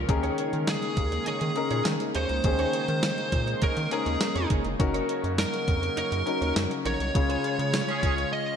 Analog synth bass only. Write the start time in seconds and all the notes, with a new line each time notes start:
0.09 D#2
0.53 D#3
0.97 D#2
1.27 D#3
1.42 D#3
1.71 A#2
1.86 D#3
2.15 D#2
2.30 C#2
2.44 D#2
2.89 D#3
3.32 A#2
3.62 D#3
3.77 D#3
4.06 D#2
4.35 F2
4.50 F#1
4.65 F1
4.80 F#1
5.24 F#2
5.68 F2
5.97 F#2
6.12 F#2
6.42 D#2
6.56 F#2
6.85 A#1
7.00 C2
7.15 C#2
7.59 C#3
8.03 C#2